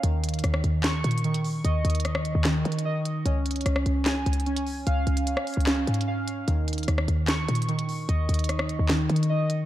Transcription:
0.03 0.42 D#2 loud
0.03 1.23 D#3 medium
0.03 closed hi-hat medium
0.24 closed hi-hat medium
0.29 closed hi-hat medium
0.34 closed hi-hat medium
0.39 closed hi-hat soft
0.44 0.63 D#2 loud
0.44 cross-stick medium
0.44 closed hi-hat medium
0.54 cross-stick loud
0.64 1.03 D#2 loud
0.64 closed hi-hat medium
0.84 3.26 C#6 medium
0.84 snare loud
0.84 clap medium
0.84 closed hi-hat medium
1.04 1.62 A#2 loud
1.04 closed hi-hat medium
1.11 closed hi-hat medium
1.18 closed hi-hat medium
1.24 2.44 D#3 medium
1.24 closed hi-hat soft
1.34 closed hi-hat medium
1.44 open hi-hat medium
1.65 1.84 D#2 loud
1.65 2.84 D#5 medium
1.65 closed hi-hat medium
1.85 2.33 D#2 loud
1.85 closed hi-hat medium
1.90 closed hi-hat medium
1.95 closed hi-hat medium
2.00 closed hi-hat medium
2.05 cross-stick medium
2.05 closed hi-hat medium
2.15 cross-stick loud
2.25 closed hi-hat medium
2.35 2.64 D#2 loud
2.45 3.26 D#3 loud
2.45 snare loud
2.45 clap medium
2.45 closed hi-hat medium
2.65 3.23 D#3 loud
2.65 closed hi-hat soft
2.72 closed hi-hat medium
2.79 closed hi-hat medium
2.85 3.26 D#5 medium
3.05 closed hi-hat medium
3.26 3.64 C#2 loud
3.26 4.45 C#4 medium
3.26 closed hi-hat medium
3.46 closed hi-hat medium
3.51 closed hi-hat medium
3.56 closed hi-hat medium
3.61 closed hi-hat soft
3.66 3.85 C#2 loud
3.66 cross-stick medium
3.66 closed hi-hat medium
3.76 cross-stick loud
3.86 4.25 C#2 loud
3.86 closed hi-hat medium
4.06 6.48 G#5 medium
4.06 snare loud
4.06 clap medium
4.06 closed hi-hat medium
4.26 4.84 C#2 loud
4.26 closed hi-hat medium
4.33 closed hi-hat medium
4.40 closed hi-hat medium
4.46 5.66 C#4 medium
4.46 closed hi-hat soft
4.56 closed hi-hat medium
4.67 open hi-hat medium
4.87 5.06 C#2 loud
4.87 6.06 F5 medium
4.87 closed hi-hat medium
5.07 5.36 C#2 loud
5.07 closed hi-hat medium
5.17 closed hi-hat medium
5.27 closed hi-hat medium
5.37 cross-stick loud
5.47 closed hi-hat medium
5.47 open hi-hat soft
5.54 5.86 C#2 loud
5.54 closed hi-hat medium
5.60 closed hi-hat soft
5.67 6.48 C#4 loud
5.67 snare loud
5.67 clap medium
5.67 closed hi-hat medium
5.87 6.45 G#2 loud
5.87 closed hi-hat medium
5.94 closed hi-hat medium
6.01 closed hi-hat medium
6.08 6.48 F5 medium
6.28 closed hi-hat medium
6.48 6.86 D#2 loud
6.48 7.67 D#3 medium
6.48 closed hi-hat medium
6.68 closed hi-hat medium
6.73 closed hi-hat medium
6.78 closed hi-hat medium
6.83 closed hi-hat soft
6.88 7.07 D#2 loud
6.88 cross-stick medium
6.88 closed hi-hat medium
6.98 cross-stick loud
7.08 7.47 D#2 loud
7.08 closed hi-hat medium
7.28 9.65 C#6 medium
7.28 snare loud
7.28 clap medium
7.28 closed hi-hat medium
7.48 8.06 A#2 loud
7.48 closed hi-hat medium
7.55 closed hi-hat medium
7.62 closed hi-hat medium
7.69 8.88 D#3 medium
7.69 closed hi-hat soft
7.79 closed hi-hat medium
7.89 open hi-hat medium
8.09 8.28 D#2 loud
8.09 9.28 D#5 medium
8.09 closed hi-hat medium
8.29 8.77 D#2 loud
8.29 closed hi-hat medium
8.34 closed hi-hat medium
8.39 closed hi-hat medium
8.44 closed hi-hat medium
8.49 cross-stick medium
8.49 closed hi-hat medium
8.59 cross-stick loud
8.69 closed hi-hat medium
8.79 9.08 D#2 loud
8.89 9.65 D#3 loud
8.89 snare loud
8.89 clap medium
8.89 closed hi-hat medium
9.10 9.65 D#3 loud
9.10 closed hi-hat soft
9.16 closed hi-hat medium
9.23 closed hi-hat medium
9.30 9.65 D#5 medium
9.50 closed hi-hat medium

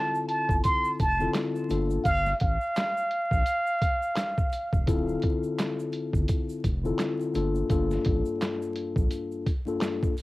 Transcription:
0.00 1.01 D3 medium
0.00 1.02 C4 medium
0.00 1.02 E4 medium
0.00 1.02 F4 medium
0.00 1.03 A4 loud
0.00 0.24 A5 medium
0.15 shaker medium
0.28 0.60 A5 medium
0.28 closed hi-hat medium
0.49 0.61 G1 loud
0.49 kick loud
0.49 shaker medium
0.64 0.96 C6 loud
0.64 kick medium
0.64 closed hi-hat medium
0.64 shaker medium
0.84 shaker medium
0.99 1.28 F1 loud
0.99 1.32 A5 medium
0.99 kick medium
0.99 closed hi-hat medium
0.99 shaker soft
1.19 1.69 D3 medium
1.19 1.70 C4 medium
1.19 1.70 E4 medium
1.19 1.69 F4 medium
1.19 1.70 A4 medium
1.19 shaker medium
1.34 snare loud
1.34 clap medium
1.34 closed hi-hat loud
1.34 shaker medium
1.56 shaker medium
1.68 1.98 G1 loud
1.68 2.02 G2 loud
1.68 2.02 A#3 medium
1.68 2.03 D4 medium
1.68 2.03 F4 medium
1.68 2.03 A4 loud
1.68 closed hi-hat medium
1.68 shaker medium
1.90 shaker soft
2.04 2.33 G1 loud
2.04 2.37 F5 loud
2.04 kick loud
2.04 closed hi-hat medium
2.04 shaker medium
2.26 snare soft
2.26 shaker soft
2.40 2.58 A1 loud
2.40 4.84 F5 medium
2.40 kick medium
2.40 closed hi-hat medium
2.61 shaker soft
2.76 snare loud
2.76 clap loud
2.76 closed hi-hat loud
2.76 shaker medium
2.97 shaker medium
3.11 closed hi-hat medium
3.31 3.43 A#1 medium
3.31 kick loud
3.31 shaker medium
3.46 closed hi-hat medium
3.46 shaker medium
3.67 shaker medium
3.82 kick medium
3.82 closed hi-hat medium
3.82 shaker soft
4.03 shaker medium
4.16 snare loud
4.16 clap medium
4.16 closed hi-hat loud
4.16 shaker medium
4.38 kick medium
4.38 shaker soft
4.52 closed hi-hat medium
4.52 shaker medium
4.73 4.85 E1 medium
4.73 kick loud
4.73 shaker soft
4.86 5.16 D1 loud
4.86 6.66 D3 medium
4.86 6.66 C4 medium
4.86 6.67 E4 loud
4.86 6.67 F4 medium
4.86 6.67 A4 loud
4.86 kick loud
4.86 closed hi-hat medium
4.86 shaker medium
5.08 shaker soft
5.22 kick loud
5.22 closed hi-hat medium
5.43 shaker soft
5.59 snare loud
5.59 clap loud
5.59 closed hi-hat loud
5.59 shaker medium
5.80 shaker medium
5.93 closed hi-hat medium
6.13 6.25 G1 loud
6.13 kick loud
6.13 shaker medium
6.28 kick loud
6.28 closed hi-hat medium
6.28 shaker medium
6.49 shaker medium
6.64 6.92 F1 loud
6.64 kick medium
6.64 closed hi-hat medium
6.64 shaker soft
6.84 7.34 D3 medium
6.84 7.34 C4 medium
6.84 7.35 E4 medium
6.84 7.34 F4 medium
6.84 7.35 A4 loud
6.84 shaker medium
6.99 snare loud
6.99 clap medium
6.99 closed hi-hat medium
6.99 shaker medium
7.20 shaker medium
7.33 7.63 G1 loud
7.33 7.67 G2 loud
7.33 7.67 A#3 medium
7.33 7.68 D4 medium
7.33 7.68 F4 medium
7.33 7.68 A4 loud
7.33 closed hi-hat medium
7.33 shaker medium
7.55 shaker soft
7.69 7.98 G1 loud
7.69 9.49 G2 medium
7.69 9.49 A#3 medium
7.69 9.49 D4 medium
7.69 9.49 F4 medium
7.69 9.50 A4 loud
7.69 kick loud
7.69 closed hi-hat medium
7.69 shaker medium
7.91 snare soft
7.91 shaker soft
8.05 8.22 A1 loud
8.05 kick loud
8.05 closed hi-hat medium
8.25 shaker soft
8.41 snare loud
8.41 clap medium
8.41 closed hi-hat loud
8.41 shaker medium
8.62 shaker medium
8.76 closed hi-hat medium
8.96 9.08 A#1 medium
8.96 kick loud
8.96 shaker medium
9.11 closed hi-hat medium
9.11 shaker medium
9.32 shaker medium
9.47 kick medium
9.47 closed hi-hat medium
9.47 shaker soft
9.66 10.13 G2 medium
9.66 10.13 A#3 medium
9.66 10.13 D4 medium
9.66 10.14 F4 medium
9.66 10.14 A4 loud
9.66 shaker medium
9.81 snare loud
9.81 clap medium
9.81 closed hi-hat loud
9.81 shaker medium
10.03 kick medium
10.03 shaker medium
10.17 open hi-hat medium
10.17 shaker medium

